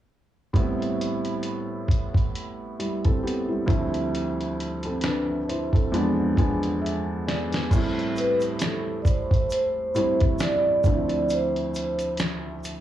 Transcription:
0.53 felt piano A2 G3 B3 C4 E4, kick, closed hi-hat
0.82 closed hi-hat
1.01 closed hi-hat
1.25 closed hi-hat
1.43 closed hi-hat
1.88 kick, closed hi-hat
2.14 kick, closed hi-hat
2.35 closed hi-hat
2.79 felt piano G3 E4, closed hi-hat
3.04 felt piano C4 A4, kick, closed hi-hat
3.23 felt piano B3 G4
3.27 closed hi-hat
3.48 felt piano G3 E4
3.66 felt piano D2 F3 A3 C4 E4, kick, closed hi-hat
3.94 closed hi-hat
4.15 closed hi-hat
4.41 closed hi-hat
4.60 closed hi-hat
4.83 felt piano C4 A4, closed hi-hat
5.01 felt piano B4, finger snap, snare, closed hi-hat
5.05 felt piano D4
5.49 felt piano E4 C5, closed hi-hat
5.73 felt piano C4 A4, kick, closed hi-hat
5.92 felt piano E2 F3 G#3 B3 D4, closed hi-hat
6.37 felt piano E2 F3 G#3 B3 D4 G#5, kick, closed hi-hat
6.63 closed hi-hat
6.81 felt piano E5
6.86 closed hi-hat
7.27 felt piano D5, snare, closed hi-hat
7.52 snare, closed hi-hat
7.71 felt piano A2 G3 A3 C4 E4, vibraphone G4, kick, closed hi-hat, crash, shaker
7.99 closed hi-hat
8.16 vibraphone B4, closed hi-hat, shaker
8.40 closed hi-hat, shaker
8.59 finger snap, snare, closed hi-hat, shaker
8.64 vibraphone A4
9.02 vibraphone D5, kick, shaker
9.07 vibraphone C5, closed hi-hat
9.31 kick, closed hi-hat
9.50 vibraphone C5, closed hi-hat, shaker
9.95 felt piano A2 G3 A3 C4 E4, closed hi-hat, shaker
9.99 vibraphone C5
10.20 kick, closed hi-hat
10.39 finger snap, snare, closed hi-hat, shaker
10.43 vibraphone D5
10.84 felt piano D2 F3 A3 C4 D4, kick, closed hi-hat, shaker
10.93 felt piano E4
11.09 closed hi-hat
11.29 vibraphone C5, closed hi-hat, shaker
11.56 closed hi-hat
11.74 closed hi-hat, shaker
11.99 closed hi-hat, shaker
12.17 finger snap, snare, closed hi-hat, shaker
12.64 closed hi-hat, shaker

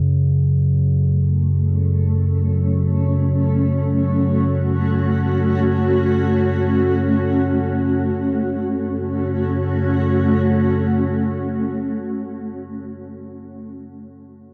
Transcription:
Already playing: synth drone F#2 C#3
0.55 ambient pad A3
1.63 ambient pad C#4
3.30 ambient pad F#4
8.15 synth drone F#2 C#3, ambient pad A3
8.30 ambient pad C#4
8.46 ambient pad F#4

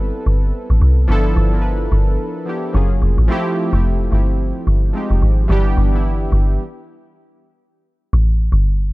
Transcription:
Already playing: log drum bass G1, synth keys G3 B3 C4 E4 A4 B4
0.26 log drum bass G1
0.70 log drum bass A1
0.81 log drum bass C2
1.08 log drum bass G1, synth keys F3 B3 D4 E4 A4
1.37 log drum bass G1
1.51 synth keys F3 B3 D4 E4 A#4
1.62 synth keys B4
1.92 log drum bass G1
2.45 synth keys F3 B3 D4 E4 G4
2.73 log drum bass F#1, synth keys F#3 A#3 C#4 F4 G#4
3.02 log drum bass F1
3.18 log drum bass A1
3.28 synth keys F3 A3 C4 E4
3.32 synth keys G4
3.71 log drum bass F1, synth keys F3 A3 C4 E4 G4
4.11 log drum bass G1, synth keys F3 A3 C4 E4
4.15 synth keys G4
4.67 log drum bass G1
4.93 synth keys F3 G#3 C4 D#4 G4
5.11 log drum bass F1
5.22 log drum bass G#1
5.48 log drum bass G1, synth keys E3 G3 B3 D4
5.52 synth keys G4
5.77 log drum bass G1
5.92 synth keys E3 G3 B3 D4
5.96 synth keys E4
6.32 log drum bass G1
8.13 log drum bass A1
8.52 log drum bass G1

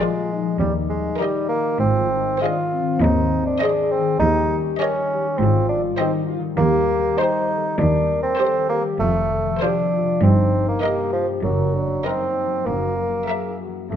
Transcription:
Already playing: harp A#2 G#3 A#3
0.00 harp F3, bassoon G#3, viola section F4, french horn section F4, violin section G#4 D5
0.20 harp A#3
0.32 french horn section D#4
0.41 harp F3
0.59 double bass section D#2, cello section D#2, harp D#3, bassoon G3
0.80 harp G3
0.90 bassoon G#3
1.01 harp A#3
1.18 bassoon G3, harp G3, viola section G4, violin section A#4 D#5
1.23 french horn section D#4
1.40 harp D#4
1.49 bassoon A#3
1.59 harp G3
1.78 double bass section G#1, harp G#2, cello section G#2, bassoon C4, french horn section F4
1.99 harp D#3
2.10 french horn section D#4
2.20 harp G#3
2.40 harp D#3, french horn section D4, bassoon F4, viola section G#4, violin section C5 D#5
2.61 harp C4
2.73 french horn section C4
2.81 harp D#3
3.01 double bass section D#2, cello section D#2, harp G#2, bassoon D#4
3.20 harp G#3
3.40 harp D#3
3.46 bassoon D4
3.60 harp G#3, french horn section G#4, viola section G#4, violin section C5 D#5
3.80 harp C4
3.92 bassoon C4
4.00 harp D#3
4.19 cello section D#2, double bass section D#2, harp D#3, bassoon D#4, french horn section G4
4.38 harp G3
4.58 harp C#4
4.78 harp G3, bassoon C#4, viola section G4, french horn section A#4, violin section C#5 D#5
4.98 harp D#4
5.11 french horn section G4
5.18 harp G3
5.38 double bass section G#1, harp G#2, cello section G#2, bassoon C4, french horn section F4
5.59 harp D#3
5.69 bassoon D4
5.79 harp G3
5.97 harp D#3, bassoon C4, french horn section D#4, viola section G4, violin section C5 D#5
6.19 harp C4
6.27 french horn section F4
6.39 harp D#3
6.57 double bass section D#2, cello section D#2, harp D#3, bassoon A#3, french horn section G4
6.79 harp G3
6.98 harp C4
7.18 harp G3, bassoon D#4, viola section G4, french horn section C5, violin section C5
7.40 harp G4
7.50 french horn section A4
7.60 harp G3
7.78 double bass section D#2, cello section D#2, harp D#3, bassoon D4, french horn section A#4
8.00 harp C4
8.20 harp G3, bassoon C4
8.38 harp C4, viola section G4, french horn section A4, violin section C5
8.60 harp G4
8.69 bassoon A#3, french horn section G4
8.80 harp G3
8.99 double bass section F1, cello section F2, harp F2, bassoon A3, french horn section F4
9.21 harp C3
9.31 french horn section A4
9.42 harp F3
9.61 harp C3, bassoon D4, viola section F4, french horn section G4, violin section C5
9.84 harp C4
9.93 french horn section F4
10.03 harp C3
10.22 double bass section G1, harp G2, cello section G2, bassoon C4, french horn section D#4
10.44 harp G3
10.63 harp A#3
10.69 bassoon A#3
10.82 harp G3, french horn section G4, violin section A#4 D#5, viola section A#4
11.03 harp D#4
11.13 bassoon F3
11.24 harp G3
11.43 double bass section F#1, harp F#2, cello section F#2, bassoon F#3, french horn section A#4
11.65 harp F#3
11.75 french horn section D4
11.86 harp A#3
12.05 harp F#3, bassoon C4, french horn section D#4, violin section A#4 D#5, viola section A#4
12.27 harp D#4
12.46 harp F#3
12.66 double bass section F#1, harp F#2, cello section F#2, bassoon A#3, french horn section F#4
12.86 harp F#3
12.98 french horn section A#4
13.06 harp A#3
13.26 harp F#3, french horn section G#4, viola section A#4, violin section A#4 E5
13.47 harp E4
13.61 french horn section F#4
13.68 harp F#3
13.89 double bass section F1, harp F2, cello section F2, bassoon A3, french horn section A4

